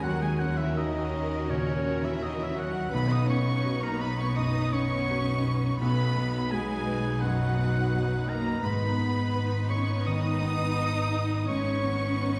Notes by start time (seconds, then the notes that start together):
Already playing: A#3 C#4 A#4 C#5
0.02 D#2 D#3 F#3 C#4 F#4 A#4 F#5
0.21 G#3 G#4 G#5
0.39 F#3 A#3 C#4 F#4 F#5
0.57 E3 E4 E5
0.76 D#3 D#4 F#4 A#4 D#5
1.13 C#4 C#5
1.48 A#2 C#3 A#3 C#4 C#5
1.85 C#4
2.03 E3 E4 E5
2.21 D#3 D#4 F#4 D#5
2.37 E3 E4 E5
2.43 E5
2.55 F#3 C#4 F#4 C#5 F#5
2.59 F#5
2.90 B1 B2 B3 D#4 B4 B5
2.94 D#4 B5
3.08 D#4 D#5 D#6
3.26 B3 C#4 C#5 C#6
3.64 F#4 D#5
3.81 A#3 A#4 A#5
3.99 B3 B4 B5
4.18 C#4 C#5 C#6
4.35 F#2 F#3 D#4 D#5 D#6
4.72 B3 C#4 C#5 C#6
5.09 F#4
5.45 B4
5.78 B1 B2 F#3 B3 D#4 B4 B5
6.17 F#3 B3
6.51 G#3 F#4 G#4 G#5
6.86 B4
7.21 F#2 F#3 F#4 F#5
7.58 B3
7.93 F#4
8.27 A#3 A#4 D#5 A#5
8.63 G#1 G#2 B3 D#4 B4 B5
8.98 G#3 B3
9.34 B4
9.69 C#4 D#4 C#5 C#6
10.04 D#3 D#4 D#5 D#6
10.42 B3
10.76 B4
11.12 D#4
11.47 G#1 G#2 B3 C#4 D#4 B4 C#5 C#6
11.84 D#3 B3
12.21 B4